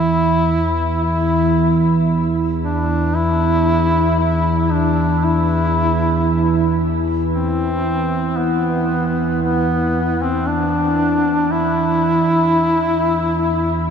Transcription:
Already playing: synth drone E2 E3, duduk E4
1.04 duduk E4
2.64 duduk D4
3.16 duduk E4
4.19 duduk E4
4.72 duduk D4
5.25 duduk E4
7.34 duduk C4
8.38 duduk B3
9.43 duduk B3
10.23 duduk C4
10.47 duduk D4
11.52 duduk E4

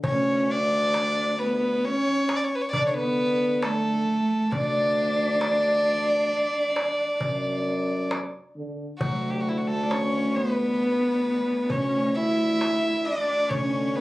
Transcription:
0.04 tuba D2, cello C#4, violin C#5, darbuka dum
0.50 cello D4, violin D5
0.94 darbuka tek
1.39 cello B3, violin B4, darbuka ka
1.84 cello C#4, violin C#5
2.29 darbuka tek
2.36 violin D5
2.44 violin C#5
2.55 violin B4
2.62 violin C#5
2.72 tuba D3, cello D4, violin D5, darbuka dum
2.87 violin C#5
2.94 cello B3, violin B4
3.19 darbuka ka
3.62 cello A3, violin A4, darbuka tek
4.51 tuba D2, cello D4, violin D5, darbuka dum
4.97 darbuka ka
5.41 darbuka tek
6.76 darbuka tek
7.21 tuba F#2, darbuka dum
7.65 darbuka ka
8.11 darbuka tek
8.56 tuba D3
8.99 tuba D2, cello section D2, cello F#3, violin F#4, darbuka dum
9.30 violin G4
9.41 violin F#4
9.46 violin E4, darbuka ka
9.58 violin F#4
9.68 cello A3, violin A4
9.83 cello D4
9.91 cello C#4, violin C#5, darbuka tek
10.35 cello B3, violin B4, darbuka ka
11.70 tuba D2, cello C#4, violin C#5, darbuka dum
12.16 cello E4, violin E5
12.61 darbuka tek
13.05 cello D4, violin D5
13.50 tuba D3, cello C#4, violin C#5, darbuka dum
13.96 cello B3, violin B4, darbuka ka

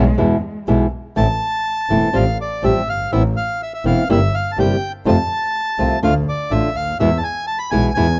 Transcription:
Already playing: double bass B1, cello G#3
0.18 double bass E2, nylon-string guitar B2 E3 G#3 B3 E4
0.68 double bass B1, nylon-string guitar B2 E3 G#3 B3 E4
1.16 double bass A1, nylon-string guitar E3 A3 C4 E4, bandoneon A5
1.90 double bass E1, nylon-string guitar E3 A3 C4 E4
2.13 double bass A1, nylon-string guitar F3 G3 C4 G4, bandoneon F5
2.41 bandoneon D5
2.63 double bass A1, nylon-string guitar F3 G3 C4 G4, bandoneon E5
2.87 double bass G1, bandoneon F5
3.12 double bass A1, nylon-string guitar E3 B3 C4 E4, bandoneon E5
3.37 bandoneon F5
3.63 bandoneon E5
3.74 bandoneon E5
3.85 double bass E1, nylon-string guitar E3 B3 C4 E4, bandoneon F5
4.09 double bass G1, nylon-string guitar C3 G3 A#3 E4 G4, bandoneon E5
4.34 bandoneon F5
4.52 bandoneon A5
4.58 double bass G1, nylon-string guitar C3 G3 A#3 E4 G4, bandoneon G5
5.06 double bass F2, nylon-string guitar C3 F3 A3 C4 F4, bandoneon A5
5.78 double bass C2, nylon-string guitar C3 F3 A3 C4 F4
6.02 double bass D2, nylon-string guitar D3 A3 D4 F4, bandoneon F5
6.29 bandoneon D5
6.50 double bass A1, nylon-string guitar D3 A3 D4 F4, bandoneon E5
6.75 double bass D2, bandoneon F5
6.99 double bass E2, nylon-string guitar B2 E3 G#3 B3 E4, bandoneon E5
7.18 bandoneon A5
7.23 bandoneon G#5
7.47 bandoneon A5
7.59 bandoneon B5
7.71 double bass B1, nylon-string guitar B2 E3 G#3 B3 E4, bandoneon G#5
7.94 double bass E2, nylon-string guitar B2 E3 G#3 B3 E4, bandoneon G#5

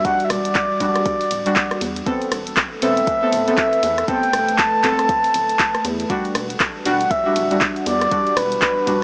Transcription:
Already playing: ambient pad G3 D4 F#4
0.05 synth stab G3 D4 F#4, soft synth lead F#5, kick, closed hi-hat, ride
0.20 closed hi-hat
0.24 soft synth lead E5
0.30 analog synth bass E1, soft synth lead D5, cross-stick, open hi-hat, ride
0.45 closed hi-hat
0.55 kick, clap, closed hi-hat, ride
0.80 analog synth bass E1, synth stab G3 D4 F#4, kick, open hi-hat, ride
0.96 cross-stick, closed hi-hat
1.06 kick, closed hi-hat, ride
1.21 open hi-hat
1.31 analog synth bass D1, open hi-hat, ride
1.46 synth stab G3 D4 F#4, closed hi-hat
1.56 kick, clap, closed hi-hat, ride
1.71 cross-stick, closed hi-hat
1.81 analog synth bass E2, open hi-hat, ride
1.96 closed hi-hat
2.06 ambient pad A3 A4 B4, synth stab B3 C4 A4, kick, closed hi-hat, ride
2.22 closed hi-hat
2.32 analog synth bass E1, cross-stick, open hi-hat, ride
2.47 closed hi-hat
2.57 kick, clap, closed hi-hat, ride
2.82 analog synth bass E1, synth stab B3 C4 A4, soft synth lead E5, open hi-hat, ride
2.97 closed hi-hat
3.07 kick, closed hi-hat, ride
3.22 synth stab B3 C4 A4
3.33 analog synth bass D1, open hi-hat, ride
3.48 synth stab B3 C4 A4, closed hi-hat
3.58 soft synth lead E5, kick, clap, closed hi-hat, ride
3.73 closed hi-hat
3.83 analog synth bass E2, open hi-hat, ride
3.98 cross-stick, closed hi-hat
4.08 synth stab B3 C4 A4, soft synth lead G5, kick, closed hi-hat, ride
4.23 closed hi-hat
4.33 analog synth bass E1, cross-stick, open hi-hat, ride
4.49 closed hi-hat
4.58 soft synth lead A5, kick, clap, closed hi-hat, ride
4.84 analog synth bass E1, synth stab B3 C4 A4, kick, clap, open hi-hat, ride
4.99 cross-stick, closed hi-hat
5.09 kick, closed hi-hat, ride
5.24 open hi-hat
5.34 analog synth bass D1, open hi-hat, ride
5.49 closed hi-hat
5.59 kick, clap, closed hi-hat, ride
5.75 cross-stick, closed hi-hat
5.85 analog synth bass E2, open hi-hat, ride
6.00 closed hi-hat
6.10 synth stab G3 D4 F#4, ambient pad G3 D4 F#4, kick, closed hi-hat, ride
6.25 closed hi-hat
6.35 analog synth bass E1, cross-stick, open hi-hat, ride
6.50 closed hi-hat
6.60 kick, clap, closed hi-hat, ride
6.85 analog synth bass E1, synth stab G3 D4 F#4, soft synth lead F#5, open hi-hat, ride
7.01 closed hi-hat
7.11 soft synth lead E5, kick, closed hi-hat, ride
7.26 synth stab G3 D4 F#4
7.36 analog synth bass D1, open hi-hat, ride
7.51 synth stab G3 D4 F#4, closed hi-hat
7.61 kick, clap, closed hi-hat, ride
7.76 closed hi-hat
7.86 analog synth bass E2, soft synth lead D5, open hi-hat, ride
8.01 cross-stick, closed hi-hat
8.11 synth stab G3 D4 F#4, kick, closed hi-hat, ride
8.27 closed hi-hat
8.37 analog synth bass E1, soft synth lead B4, cross-stick, open hi-hat, ride
8.52 closed hi-hat
8.62 soft synth lead B4, kick, clap, closed hi-hat, ride
8.87 analog synth bass E1, synth stab G3 D4 F#4, kick, open hi-hat, ride

